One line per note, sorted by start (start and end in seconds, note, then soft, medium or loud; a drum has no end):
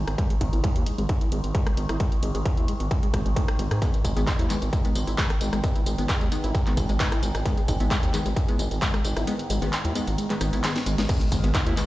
0.00 11.08 G#2 medium
0.00 11.08 D#3 medium
0.07 0.15 G#1 medium
0.07 cross-stick medium
0.07 closed hi-hat medium
0.18 0.27 G#3 medium
0.18 kick loud
0.18 closed hi-hat medium
0.30 0.33 G#3 loud
0.30 closed hi-hat medium
0.41 0.50 G#1 loud
0.41 0.44 D#4 medium
0.41 kick medium
0.41 open hi-hat loud
0.53 0.61 G#1 medium
0.53 0.61 E4 medium
0.53 closed hi-hat medium
0.64 0.69 G#3 medium
0.64 kick loud
0.64 closed hi-hat medium
0.76 0.84 D#2 medium
0.76 closed hi-hat medium
0.86 0.95 G#3 medium
0.86 open hi-hat loud
0.98 1.06 G#1 medium
0.98 1.01 G#3 loud
0.98 closed hi-hat medium
1.09 1.13 D#4 medium
1.09 kick loud
1.09 closed hi-hat medium
1.21 1.29 E4 medium
1.21 closed hi-hat medium
1.32 1.41 G#1 loud
1.32 1.38 G#3 medium
1.32 open hi-hat loud
1.44 1.52 G#1 medium
1.44 closed hi-hat medium
1.54 1.63 G#3 medium
1.54 kick loud
1.54 closed hi-hat medium
1.66 1.70 G#3 loud
1.66 cross-stick medium
1.66 closed hi-hat medium
1.77 1.86 G#1 medium
1.77 1.81 D#4 medium
1.77 open hi-hat loud
1.89 1.97 G#1 medium
1.89 1.97 E4 medium
1.89 cross-stick medium
1.89 closed hi-hat medium
2.00 2.06 G#3 medium
2.00 kick loud
2.00 closed hi-hat medium
2.12 closed hi-hat medium
2.23 2.32 G#1 medium
2.23 2.31 G#3 medium
2.23 open hi-hat loud
2.35 2.43 G#1 medium
2.35 2.38 G#3 loud
2.35 closed hi-hat medium
2.45 2.49 D#4 medium
2.45 kick loud
2.45 closed hi-hat medium
2.57 2.65 D#2 medium
2.57 2.65 E4 medium
2.57 closed hi-hat soft
2.68 2.74 G#3 medium
2.68 open hi-hat loud
2.80 2.88 G#1 medium
2.80 closed hi-hat medium
2.91 2.99 G#3 medium
2.91 kick loud
2.91 closed hi-hat medium
3.03 3.06 G#3 loud
3.03 closed hi-hat medium
3.14 3.22 G#1 medium
3.14 3.19 G#3 medium
3.14 kick medium
3.14 cross-stick medium
3.14 open hi-hat loud
3.26 3.34 G#1 medium
3.26 3.29 G#3 medium
3.26 closed hi-hat soft
3.36 3.42 A3 loud
3.36 kick loud
3.36 closed hi-hat medium
3.48 cross-stick loud
3.48 closed hi-hat medium
3.59 3.68 G#1 medium
3.59 3.63 G#3 medium
3.59 open hi-hat medium
3.71 3.79 G#2 medium
3.71 3.76 G#4 medium
3.71 cross-stick medium
3.71 closed hi-hat medium
3.82 3.97 D#3 medium
3.82 3.97 G#3 medium
3.82 3.88 G#3 medium
3.82 3.97 B3 loud
3.82 kick loud
3.82 closed hi-hat medium
3.82 tambourine soft
3.94 closed hi-hat soft
3.94 tambourine soft
4.05 4.13 G#1 medium
4.05 4.13 G#3 medium
4.05 kick medium
4.05 open hi-hat loud
4.05 tambourine medium
4.16 4.24 G#1 medium
4.16 4.25 D#3 medium
4.16 4.25 G#3 medium
4.16 4.20 G#3 loud
4.16 4.25 B3 loud
4.16 closed hi-hat medium
4.16 tambourine soft
4.27 4.31 D#4 medium
4.27 kick loud
4.27 clap loud
4.27 closed hi-hat medium
4.27 tambourine soft
4.39 4.47 D#2 medium
4.39 4.47 E4 medium
4.39 closed hi-hat soft
4.39 tambourine soft
4.50 4.65 D#3 medium
4.50 4.65 G#3 medium
4.50 4.56 G#3 medium
4.50 4.65 B3 loud
4.50 clap soft
4.50 open hi-hat medium
4.50 tambourine medium
4.62 4.70 G#1 medium
4.62 closed hi-hat medium
4.62 tambourine soft
4.73 4.81 G#3 medium
4.73 kick loud
4.73 closed hi-hat medium
4.73 tambourine soft
4.85 4.94 D#3 medium
4.85 4.94 G#3 medium
4.85 4.88 G#3 loud
4.85 4.94 B3 loud
4.85 closed hi-hat medium
4.85 tambourine soft
4.95 5.04 G#1 medium
4.95 4.99 D#4 medium
4.95 open hi-hat loud
4.95 tambourine medium
5.07 5.15 G#1 medium
5.07 5.15 E4 medium
5.07 closed hi-hat soft
5.07 tambourine soft
5.18 5.28 D#3 medium
5.18 5.28 G#3 medium
5.18 5.24 G#3 medium
5.18 5.28 B3 medium
5.18 kick loud
5.18 clap loud
5.18 closed hi-hat medium
5.18 tambourine soft
5.30 cross-stick medium
5.30 closed hi-hat medium
5.30 tambourine soft
5.41 5.50 G#1 medium
5.41 5.49 G#3 medium
5.41 open hi-hat medium
5.41 tambourine medium
5.53 5.61 G#1 medium
5.53 5.56 G#3 loud
5.53 cross-stick medium
5.53 closed hi-hat medium
5.53 tambourine soft
5.64 5.79 D#3 medium
5.64 5.79 G#3 medium
5.64 5.79 B3 loud
5.64 5.67 D#4 medium
5.64 kick loud
5.64 closed hi-hat medium
5.64 tambourine soft
5.76 5.83 E4 medium
5.76 closed hi-hat medium
5.76 tambourine soft
5.86 5.95 G#1 medium
5.86 5.92 G#3 medium
5.86 open hi-hat loud
5.86 tambourine medium
5.98 6.06 G#1 medium
5.98 6.07 D#3 medium
5.98 6.07 G#3 medium
5.98 6.07 B3 loud
5.98 closed hi-hat soft
5.98 tambourine soft
6.09 6.18 G#3 medium
6.09 kick loud
6.09 clap loud
6.09 closed hi-hat medium
6.09 tambourine soft
6.21 6.29 D#2 medium
6.21 6.24 G#3 loud
6.21 closed hi-hat soft
6.21 tambourine soft
6.32 6.47 D#3 medium
6.32 6.47 G#3 medium
6.32 6.47 B3 loud
6.32 6.35 D#4 medium
6.32 open hi-hat medium
6.32 tambourine medium
6.44 6.52 G#1 medium
6.44 6.51 E4 medium
6.44 closed hi-hat soft
6.44 tambourine soft
6.54 6.60 G#3 medium
6.54 kick loud
6.54 closed hi-hat medium
6.54 tambourine soft
6.66 6.75 D#3 medium
6.66 6.75 G#3 medium
6.66 6.75 B3 loud
6.66 clap soft
6.66 closed hi-hat soft
6.66 tambourine soft
6.77 6.86 G#1 loud
6.77 6.86 G#3 medium
6.77 kick medium
6.77 open hi-hat loud
6.77 tambourine medium
6.89 6.97 G#1 medium
6.89 6.92 G#3 loud
6.89 closed hi-hat soft
6.89 tambourine soft
7.00 7.10 D#3 medium
7.00 7.10 G#3 medium
7.00 7.10 B3 loud
7.00 7.03 D#4 medium
7.00 kick loud
7.00 clap loud
7.00 closed hi-hat medium
7.00 tambourine soft
7.12 7.20 E4 medium
7.12 cross-stick medium
7.12 closed hi-hat soft
7.12 tambourine soft
7.23 7.32 G#1 medium
7.23 7.28 G#3 medium
7.23 open hi-hat medium
7.23 tambourine medium
7.35 7.43 G#1 medium
7.35 cross-stick medium
7.35 closed hi-hat soft
7.35 tambourine soft
7.45 7.61 D#3 medium
7.45 7.54 G#3 medium
7.45 7.61 G#3 medium
7.45 7.61 B3 loud
7.45 kick loud
7.45 closed hi-hat medium
7.45 tambourine soft
7.57 7.60 G#3 loud
7.57 closed hi-hat medium
7.57 tambourine soft
7.68 7.77 G#1 medium
7.68 7.72 D#4 medium
7.68 kick medium
7.68 open hi-hat loud
7.68 tambourine medium
7.80 7.88 G#1 medium
7.80 7.89 D#3 medium
7.80 7.89 G#3 medium
7.80 7.89 B3 loud
7.80 7.88 E4 medium
7.80 closed hi-hat medium
7.80 tambourine soft
7.91 7.97 G#3 medium
7.91 kick loud
7.91 clap loud
7.91 closed hi-hat medium
7.91 tambourine soft
8.03 8.11 D#2 medium
8.03 closed hi-hat medium
8.03 tambourine soft
8.14 8.29 D#3 medium
8.14 8.22 G#3 medium
8.14 8.29 G#3 medium
8.14 8.29 B3 loud
8.14 clap soft
8.14 open hi-hat medium
8.14 tambourine medium
8.26 8.34 G#1 medium
8.26 8.29 G#3 loud
8.26 closed hi-hat medium
8.26 tambourine soft
8.36 8.40 D#4 medium
8.36 kick loud
8.36 closed hi-hat medium
8.36 tambourine soft
8.48 8.57 D#3 medium
8.48 8.57 G#3 medium
8.48 8.57 B3 loud
8.48 8.56 E4 medium
8.48 closed hi-hat medium
8.48 tambourine soft
8.59 8.68 G#1 medium
8.59 8.65 G#3 medium
8.59 open hi-hat loud
8.59 tambourine medium
8.71 8.79 G#1 medium
8.71 closed hi-hat medium
8.71 tambourine soft
8.82 8.92 D#3 medium
8.82 8.90 G#3 medium
8.82 8.92 G#3 medium
8.82 8.92 B3 medium
8.82 kick loud
8.82 clap loud
8.82 closed hi-hat medium
8.82 tambourine soft
8.94 8.97 G#3 loud
8.94 cross-stick medium
8.94 closed hi-hat medium
8.94 tambourine soft
9.04 9.13 G#1 medium
9.04 9.08 D#4 medium
9.04 open hi-hat medium
9.04 tambourine medium
9.16 9.24 G#1 medium
9.16 9.24 E4 medium
9.16 cross-stick medium
9.16 closed hi-hat medium
9.16 tambourine soft
9.27 9.43 D#3 medium
9.27 9.43 G#3 medium
9.27 9.33 G#3 medium
9.27 9.43 B3 loud
9.27 closed hi-hat medium
9.27 tambourine soft
9.39 closed hi-hat medium
9.39 tambourine soft
9.50 9.59 G#1 loud
9.50 9.58 G#3 medium
9.50 open hi-hat loud
9.50 tambourine medium
9.62 9.70 G#1 medium
9.62 9.71 D#3 medium
9.62 9.65 G#3 loud
9.62 9.71 G#3 medium
9.62 9.71 B3 loud
9.62 closed hi-hat medium
9.62 tambourine soft
9.73 9.76 D#4 medium
9.73 clap loud
9.73 closed hi-hat medium
9.73 tambourine soft
9.85 9.93 D#2 medium
9.85 9.92 E4 medium
9.85 closed hi-hat medium
9.85 tambourine soft
9.95 10.11 D#3 medium
9.95 10.01 G#3 medium
9.95 10.11 G#3 medium
9.95 10.11 B3 loud
9.95 open hi-hat medium
9.95 tambourine medium
10.07 10.15 G#1 medium
10.07 closed hi-hat medium
10.07 tambourine soft
10.18 10.27 G#3 medium
10.18 closed hi-hat medium
10.18 tambourine soft
10.30 10.39 D#3 medium
10.30 10.33 G#3 loud
10.30 10.39 G#3 medium
10.30 10.39 B3 loud
10.30 clap soft
10.30 closed hi-hat medium
10.30 tambourine soft
10.41 10.50 G#1 medium
10.41 10.51 D#3 medium
10.41 10.51 G#3 medium
10.41 10.51 B3 loud
10.41 10.44 D#4 medium
10.41 cross-stick medium
10.41 open hi-hat loud
10.41 tambourine medium
10.53 10.61 G#1 medium
10.53 10.62 D#3 medium
10.53 10.62 G#3 medium
10.53 10.62 B3 medium
10.53 10.61 E4 medium
10.53 closed hi-hat medium
10.53 tambourine soft
10.64 10.79 D#3 loud
10.64 10.79 G#3 medium
10.64 10.69 G#3 medium
10.64 10.79 B3 loud
10.64 snare medium
10.64 clap loud
10.64 closed hi-hat medium
10.64 tambourine soft
10.76 snare medium
10.76 closed hi-hat medium
10.76 tambourine soft
10.86 10.95 G#1 medium
10.86 10.95 G#3 medium
10.86 open hi-hat medium
10.86 tambourine medium
10.98 11.06 G#1 medium
10.98 11.08 D#3 medium
10.98 11.01 G#3 loud
10.98 11.08 G#3 medium
10.98 11.08 B3 medium
10.98 snare medium
10.98 closed hi-hat medium
10.98 tambourine soft
11.09 11.86 G#2 medium
11.09 11.24 D#3 loud
11.09 11.86 D#3 medium
11.09 11.15 G#3 medium
11.09 11.24 G#3 medium
11.09 11.24 B3 loud
11.09 kick loud
11.09 closed hi-hat medium
11.09 crash loud
11.09 tambourine soft
11.09 impact medium
11.21 closed hi-hat medium
11.21 tambourine soft
11.32 11.41 G#1 loud
11.32 11.40 G#3 medium
11.32 kick medium
11.32 open hi-hat loud
11.32 tambourine medium
11.44 11.52 G#1 medium
11.44 11.53 D#3 loud
11.44 11.53 G#3 medium
11.44 11.47 G#3 loud
11.44 11.53 B3 loud
11.44 closed hi-hat medium
11.44 tambourine soft
11.54 11.58 D#4 medium
11.54 kick loud
11.54 clap loud
11.54 closed hi-hat medium
11.54 tambourine soft
11.67 11.74 D#2 medium
11.67 11.74 E4 medium
11.67 closed hi-hat medium
11.67 tambourine soft
11.77 11.86 D#3 medium
11.77 11.83 G#3 medium
11.77 11.86 G#3 medium
11.77 11.86 B3 loud
11.77 clap soft
11.77 open hi-hat loud
11.77 tambourine medium